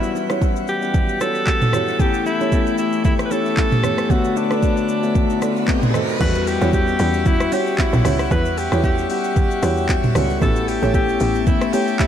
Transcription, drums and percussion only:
0.03 shaker
0.15 low bongo, shaker
0.30 cross-stick, low bongo, shaker
0.41 kick, high bongo, shaker
0.56 shaker
0.68 shaker
0.82 shaker
0.94 kick, low conga, shaker
1.09 shaker
1.21 cross-stick, high bongo, low bongo, shaker
1.35 shaker
1.47 kick, clap, high bongo, shaker
1.61 mid tom, low bongo, shaker
1.73 cross-stick, low conga, shaker
1.88 shaker
1.99 kick, low conga, shaker
2.14 shaker
2.26 low bongo, shaker
2.41 low bongo, shaker
2.52 kick, high bongo, shaker
2.67 shaker
2.78 shaker
2.92 shaker
3.04 kick, low conga, shaker
3.19 cross-stick, shaker
3.31 high bongo, low bongo, shaker
3.45 shaker
3.57 kick, clap, high bongo, shaker
3.72 mid tom, low bongo, shaker
3.83 cross-stick, low conga, shaker
3.98 cross-stick, shaker
4.10 kick, low conga, shaker
4.24 shaker
4.36 low bongo, shaker
4.51 cross-stick, low bongo, shaker
4.62 kick, high bongo, shaker
4.77 shaker
4.88 shaker
5.03 high bongo, shaker
5.15 kick, low conga, shaker
5.30 shaker
5.42 cross-stick, high bongo, low bongo, shaker
5.56 shaker
5.68 kick, clap, high bongo, shaker
5.83 mid tom, low bongo, shaker
5.94 cross-stick, low conga, shaker
6.09 shaker
6.20 kick, crash, low conga, shaker
6.35 shaker
6.47 open hi-hat, shaker
6.62 low bongo, shaker
6.73 kick, high bongo, shaker
6.88 shaker
6.99 open hi-hat, shaker
7.14 shaker
7.26 kick, low conga, shaker
7.40 cross-stick, shaker
7.52 open hi-hat, high bongo, low bongo, shaker
7.67 shaker
7.78 kick, clap, high bongo, shaker
7.93 mid tom, low bongo, shaker
8.05 cross-stick, open hi-hat, low conga, shaker
8.19 cross-stick, shaker
8.31 kick, low conga, shaker
8.45 shaker
8.58 open hi-hat, shaker
8.72 cross-stick, low bongo, shaker
8.84 kick, high bongo, shaker
8.98 shaker
9.10 open hi-hat, shaker
9.24 shaker
9.36 kick, low conga, shaker
9.51 shaker
9.63 cross-stick, open hi-hat, high bongo, low bongo, shaker
9.77 shaker
9.89 kick, clap, high bongo, shaker
10.03 mid tom, low bongo, shaker
10.15 cross-stick, open hi-hat, low conga, shaker
10.30 shaker
10.41 kick, low conga, shaker
10.56 shaker
10.68 open hi-hat, shaker
10.83 low bongo, shaker
10.94 kick, high bongo, shaker
11.09 shaker
11.20 open hi-hat, shaker
11.35 shaker
11.47 kick, low conga, shaker
11.61 cross-stick, shaker
11.73 open hi-hat, high bongo, low bongo, shaker
11.88 shaker
11.99 kick, clap, high bongo, shaker

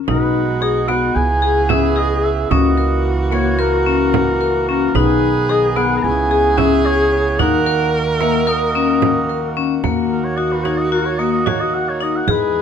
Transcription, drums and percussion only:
0.08 frame drum
0.35 frame drum
0.89 frame drum
1.16 frame drum
1.43 frame drum
1.70 frame drum
2.51 frame drum
2.78 frame drum
3.32 frame drum
3.87 frame drum
4.14 frame drum
4.95 frame drum
5.23 frame drum
5.76 frame drum
6.04 frame drum
6.31 frame drum
6.58 frame drum
7.39 frame drum
7.66 frame drum
8.21 frame drum
9.02 frame drum
9.57 frame drum
9.84 frame drum
10.38 frame drum
10.65 frame drum
11.47 frame drum
12.28 frame drum

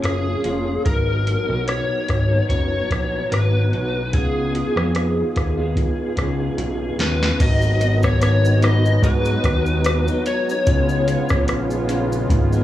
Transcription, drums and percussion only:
0.04 cross-stick, closed hi-hat
0.44 closed hi-hat
0.85 kick, closed hi-hat
1.27 closed hi-hat
1.68 cross-stick, closed hi-hat
2.08 kick, cross-stick, closed hi-hat
2.49 kick, closed hi-hat
2.90 kick, cross-stick, closed hi-hat
3.32 cross-stick, closed hi-hat
3.73 closed hi-hat
4.13 kick, closed hi-hat
4.55 closed hi-hat
4.77 cross-stick
4.95 cross-stick, closed hi-hat
5.36 kick, cross-stick, closed hi-hat
5.76 kick, closed hi-hat
6.17 kick, cross-stick, closed hi-hat
6.58 closed hi-hat
6.99 snare, closed hi-hat
7.22 snare
7.40 kick, closed hi-hat, crash, shaker
7.62 shaker
7.81 closed hi-hat, shaker
8.03 kick, cross-stick, shaker
8.22 cross-stick, closed hi-hat, shaker
8.45 shaker
8.62 cross-stick, closed hi-hat, shaker
8.86 shaker
9.03 kick, closed hi-hat, shaker
9.25 shaker
9.44 kick, cross-stick, closed hi-hat, shaker
9.66 shaker
9.85 cross-stick, closed hi-hat, shaker
10.08 shaker
10.26 closed hi-hat, shaker
10.49 shaker
10.67 kick, closed hi-hat, shaker
10.89 shaker
11.08 closed hi-hat, shaker
11.29 kick, cross-stick, shaker
11.48 cross-stick, closed hi-hat, shaker
11.70 shaker
11.89 closed hi-hat, shaker
12.12 shaker
12.30 kick, closed hi-hat, shaker
12.53 shaker

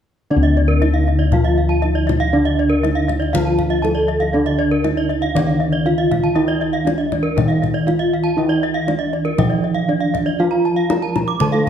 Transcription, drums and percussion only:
0.45 kendang slap
0.82 kendang slap, kendang high
1.06 kendang slap
1.20 kendang slap
1.32 kendang low
1.45 kendang slap
1.83 kendang slap
2.09 kendang high, kendang low
2.22 kendang slap
2.46 kendang slap
2.85 kendang slap, kendang high
3.09 kendang slap, kendang high, kendang low
3.22 kendang slap
3.35 kendang low
3.47 kendang slap
3.59 kendang low
3.85 kendang slap, kendang high
4.22 kendang slap
4.47 kendang slap
4.84 kendang slap, kendang high
5.11 kendang slap
5.24 kendang slap
5.36 kendang low
5.50 kendang slap
5.87 kendang slap
6.12 kendang high, kendang low
6.25 kendang slap
6.49 kendang slap
6.74 kendang slap
6.87 kendang slap, kendang high
7.12 kendang slap, kendang high, kendang low
7.38 kendang low
7.50 kendang slap
7.63 kendang slap, kendang low
7.88 kendang high
8.51 kendang slap
8.88 kendang slap, kendang high
9.13 kendang slap
9.25 kendang slap
9.38 kendang low
9.51 kendang slap
9.90 kendang slap
10.15 kendang low
10.28 kendang slap
10.52 kendang slap
10.90 kendang slap, kendang high
11.16 kendang slap, kendang high, kendang low
11.28 kendang slap
11.40 kendang low
11.54 kendang slap

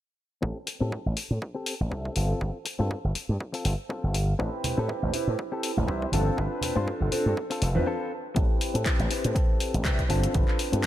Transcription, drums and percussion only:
0.43 kick
0.67 open hi-hat
0.92 kick
1.17 open hi-hat
1.42 kick
1.66 open hi-hat
1.92 kick
2.05 kick
2.16 open hi-hat
2.41 kick
2.66 open hi-hat
2.91 kick
3.15 open hi-hat
3.40 kick
3.54 open hi-hat
3.65 open hi-hat
3.90 kick
4.14 open hi-hat
4.40 kick
4.53 tambourine
4.63 open hi-hat, tambourine, low conga
4.89 kick
5.03 tambourine, low conga
5.13 open hi-hat, tambourine
5.39 kick
5.52 tambourine
5.63 open hi-hat, tambourine
5.77 tambourine, high conga
5.88 kick, tambourine
6.02 kick, tambourine
6.12 open hi-hat, tambourine, high conga
6.26 tambourine
6.38 kick
6.51 tambourine
6.61 open hi-hat, tambourine, low conga
6.76 tambourine
6.88 kick
7.00 tambourine, low conga
7.12 open hi-hat, tambourine
7.37 kick, tambourine
7.51 open hi-hat
7.61 open hi-hat, tambourine
7.75 tambourine, high conga
8.36 kick, closed hi-hat
8.61 open hi-hat
8.75 closed hi-hat
8.86 kick, clap, closed hi-hat
9.00 closed hi-hat
9.11 open hi-hat
9.24 closed hi-hat
9.36 kick, closed hi-hat
9.60 open hi-hat
9.74 closed hi-hat
9.85 kick, clap, closed hi-hat
9.99 kick, closed hi-hat
10.10 open hi-hat
10.24 closed hi-hat
10.34 kick, closed hi-hat
10.48 clap
10.59 open hi-hat
10.73 closed hi-hat

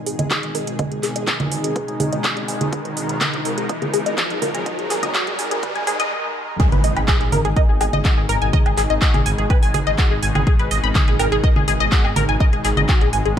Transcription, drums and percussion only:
0.06 open hi-hat
0.19 closed hi-hat, low conga
0.31 kick, clap, closed hi-hat
0.43 closed hi-hat
0.55 open hi-hat
0.67 closed hi-hat
0.79 kick, closed hi-hat, low conga
0.92 closed hi-hat
1.03 clap, open hi-hat
1.16 closed hi-hat
1.27 kick, clap, closed hi-hat
1.40 closed hi-hat, low conga
1.52 open hi-hat
1.64 closed hi-hat
1.76 kick, closed hi-hat
1.88 closed hi-hat
2.00 open hi-hat, low conga
2.13 closed hi-hat
2.24 kick, clap, closed hi-hat
2.37 closed hi-hat
2.48 open hi-hat
2.61 closed hi-hat, low conga
2.73 kick, closed hi-hat
2.85 closed hi-hat
2.97 open hi-hat
3.09 closed hi-hat
3.21 kick, clap, closed hi-hat, low conga
3.34 closed hi-hat
3.45 open hi-hat
3.58 closed hi-hat
3.69 kick, closed hi-hat
3.82 closed hi-hat, low conga
3.94 open hi-hat
4.06 closed hi-hat
4.18 kick, clap, closed hi-hat
4.30 closed hi-hat
4.42 open hi-hat, low conga
4.55 closed hi-hat
4.66 kick, closed hi-hat
4.79 closed hi-hat
4.90 clap, open hi-hat
5.03 closed hi-hat, low conga
5.15 kick, clap, closed hi-hat
5.27 closed hi-hat
5.39 open hi-hat
5.51 closed hi-hat
5.63 kick, closed hi-hat, low conga
5.75 closed hi-hat
5.87 open hi-hat
6.00 closed hi-hat
6.60 kick, closed hi-hat
6.72 closed hi-hat, low conga
6.84 open hi-hat
6.96 closed hi-hat, low woodblock
7.08 kick, clap, closed hi-hat
7.21 closed hi-hat
7.32 open hi-hat, low conga
7.45 closed hi-hat
7.56 kick, closed hi-hat
7.81 open hi-hat, low woodblock
7.93 closed hi-hat, low conga
8.05 kick, clap, closed hi-hat
8.29 open hi-hat
8.42 closed hi-hat
8.53 kick, closed hi-hat, low conga
8.66 closed hi-hat, low woodblock
8.78 clap, open hi-hat
8.90 closed hi-hat
9.02 kick, clap, closed hi-hat
9.14 closed hi-hat, low conga
9.26 open hi-hat
9.38 closed hi-hat
9.50 kick, closed hi-hat, low woodblock
9.63 open hi-hat
9.74 open hi-hat, low conga
9.87 closed hi-hat
9.98 kick, clap, closed hi-hat
10.23 open hi-hat
10.35 closed hi-hat, low conga, low woodblock
10.47 kick, closed hi-hat
10.59 closed hi-hat
10.71 open hi-hat
10.84 closed hi-hat
10.95 kick, clap, closed hi-hat, low conga
11.08 closed hi-hat
11.19 open hi-hat, low woodblock
11.32 closed hi-hat
11.44 kick, closed hi-hat
11.56 low conga
11.68 open hi-hat
11.80 closed hi-hat
11.92 kick, clap, closed hi-hat
12.05 low woodblock
12.16 open hi-hat, low conga
12.29 closed hi-hat
12.40 kick, closed hi-hat
12.53 closed hi-hat
12.65 clap, open hi-hat
12.77 closed hi-hat, low conga
12.89 kick, clap, closed hi-hat, low woodblock
13.01 closed hi-hat
13.13 open hi-hat
13.25 closed hi-hat

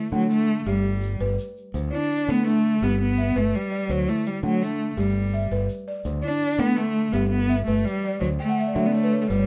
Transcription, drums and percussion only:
0.13 shaker
0.22 shaker
0.30 shaker
0.66 shaker
0.93 shaker
1.01 shaker
1.38 shaker
1.57 shaker
1.75 shaker
2.11 shaker
2.29 shaker
2.38 shaker
2.47 shaker
2.82 shaker
3.09 shaker
3.18 shaker
3.54 shaker
3.72 shaker
3.90 shaker
4.08 shaker
4.25 shaker
4.62 shaker
4.98 shaker
5.07 shaker
5.16 shaker
5.52 shaker
5.69 shaker
6.05 shaker
6.41 shaker
6.59 shaker
6.67 shaker
6.76 shaker
7.13 shaker
7.41 shaker
7.49 shaker
7.87 shaker
8.04 shaker
8.22 shaker
8.58 shaker
8.76 shaker
8.85 shaker
8.94 shaker
9.30 shaker

